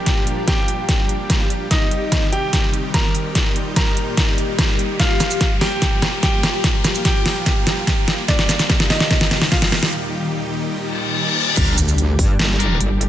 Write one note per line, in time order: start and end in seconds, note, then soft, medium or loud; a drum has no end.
0.00 1.68 A#2 medium
0.00 1.68 F3 medium
0.00 8.24 G3 medium
0.00 1.68 D4 medium
0.00 0.39 G4 medium
0.00 2.37 G4 medium
0.00 8.24 G4 medium
0.00 2.37 F5 medium
0.00 0.39 G5 medium
0.00 2.37 A#5 medium
0.00 riser medium
0.06 kick medium
0.06 snare soft
0.06 closed hi-hat medium
0.27 closed hi-hat soft
0.47 1.63 G4 medium
0.47 1.63 G5 medium
0.47 kick medium
0.47 snare soft
0.47 closed hi-hat medium
0.68 closed hi-hat medium
0.89 kick medium
0.89 snare medium
0.89 closed hi-hat medium
1.09 closed hi-hat medium
1.30 kick medium
1.30 snare medium
1.30 closed hi-hat medium
1.50 closed hi-hat medium
1.71 3.34 C3 medium
1.71 4.96 D#3 medium
1.71 4.01 D#3 medium
1.71 2.24 D#4 medium
1.71 3.34 D#4 medium
1.71 2.24 D#5 medium
1.71 kick medium
1.71 snare medium
1.71 closed hi-hat medium
1.91 closed hi-hat soft
2.09 4.01 C6 medium
2.09 kick medium
2.09 snare medium
2.09 closed hi-hat medium
2.32 2.86 G4 medium
2.32 2.86 G5 medium
2.32 closed hi-hat soft
2.53 kick medium
2.53 snare medium
2.53 closed hi-hat medium
2.74 closed hi-hat medium
2.94 3.68 A#4 medium
2.94 3.68 A#5 medium
2.94 kick loud
2.94 snare medium
2.94 closed hi-hat medium
3.15 closed hi-hat medium
3.35 4.98 A#2 medium
3.35 4.98 D#4 medium
3.35 8.94 G4 medium
3.35 kick medium
3.35 snare medium
3.35 closed hi-hat medium
3.56 5.00 D#5 medium
3.56 closed hi-hat soft
3.76 4.92 A#4 medium
3.76 4.92 A#5 medium
3.76 kick loud
3.76 snare medium
3.76 closed hi-hat medium
3.97 closed hi-hat medium
4.09 8.94 A#5 medium
4.17 kick medium
4.17 snare medium
4.17 closed hi-hat medium
4.38 closed hi-hat soft
4.59 kick medium
4.59 snare medium
4.59 closed hi-hat medium
4.79 closed hi-hat soft
5.00 8.25 A#2 medium
5.00 8.25 F3 medium
5.00 9.89 F4 medium
5.00 5.53 F4 medium
5.00 5.53 F5 medium
5.00 kick medium
5.00 snare medium
5.00 closed hi-hat medium
5.20 snare medium
5.20 closed hi-hat soft
5.20 shaker medium
5.31 shaker medium
5.41 8.94 F5 medium
5.41 kick loud
5.41 snare medium
5.41 closed hi-hat medium
5.61 6.15 G4 medium
5.61 6.15 G5 medium
5.61 snare medium
5.61 open hi-hat medium
5.82 kick loud
5.82 snare medium
5.82 closed hi-hat medium
6.02 snare medium
6.02 closed hi-hat medium
6.23 6.97 G4 medium
6.23 6.97 G5 medium
6.23 kick medium
6.23 snare medium
6.23 closed hi-hat medium
6.43 snare medium
6.43 closed hi-hat soft
6.64 kick medium
6.64 snare medium
6.64 closed hi-hat medium
6.85 snare medium
6.85 closed hi-hat soft
6.85 shaker medium
6.95 shaker medium
7.05 8.20 G4 medium
7.05 8.20 G5 medium
7.05 kick loud
7.05 snare medium
7.05 closed hi-hat medium
7.26 snare medium
7.26 open hi-hat medium
7.46 kick loud
7.46 snare medium
7.46 closed hi-hat medium
7.67 snare medium
7.67 closed hi-hat soft
7.67 shaker medium
7.87 kick medium
7.87 snare medium
7.87 closed hi-hat medium
8.08 snare medium
8.08 closed hi-hat soft
8.28 9.91 C3 medium
8.28 9.91 D#3 medium
8.28 9.93 D#3 medium
8.28 11.54 G3 medium
8.28 8.82 D4 medium
8.28 11.54 G4 medium
8.28 8.82 D5 loud
8.28 kick medium
8.28 snare medium
8.28 closed hi-hat medium
8.38 9.93 D6 medium
8.38 snare medium
8.49 snare medium
8.49 closed hi-hat soft
8.49 shaker medium
8.59 snare medium
8.59 shaker medium
8.70 kick loud
8.70 snare medium
8.70 closed hi-hat medium
8.80 snare medium
8.90 9.44 D#4 medium
8.90 9.44 D#5 medium
8.90 snare loud
8.90 open hi-hat medium
9.00 snare medium
9.11 kick loud
9.11 snare medium
9.11 closed hi-hat medium
9.21 snare medium
9.31 snare medium
9.31 closed hi-hat medium
9.42 snare medium
9.52 9.93 F4 medium
9.52 9.93 F5 medium
9.52 kick loud
9.52 snare medium
9.52 closed hi-hat medium
9.62 snare medium
9.72 snare medium
9.72 closed hi-hat soft
9.83 snare medium
9.93 11.56 A#2 medium
9.93 11.56 D#3 medium
9.93 11.56 D#4 medium
10.75 reverse cymbal medium
11.57 11.76 G1 loud
11.57 13.09 A#2 medium
11.57 13.09 D3 medium
11.57 13.09 G3 medium
11.57 11.74 D4 medium
11.57 13.09 D4 medium
11.57 13.09 G4 medium
11.57 11.74 G4 medium
11.57 11.74 A#4 medium
11.57 kick loud
11.57 closed hi-hat medium
11.57 crash loud
11.57 sub drop medium
11.78 12.17 D2 loud
11.78 closed hi-hat medium
11.78 shaker medium
11.88 shaker medium
11.98 closed hi-hat medium
12.19 12.38 G2 loud
12.19 kick loud
12.19 open hi-hat loud
12.39 12.79 G1 medium
12.39 snare loud
12.39 closed hi-hat medium
12.60 12.77 D4 medium
12.60 12.77 G4 medium
12.60 12.77 A#4 medium
12.60 closed hi-hat medium
12.80 13.09 G1 medium
12.80 closed hi-hat medium
13.01 closed hi-hat medium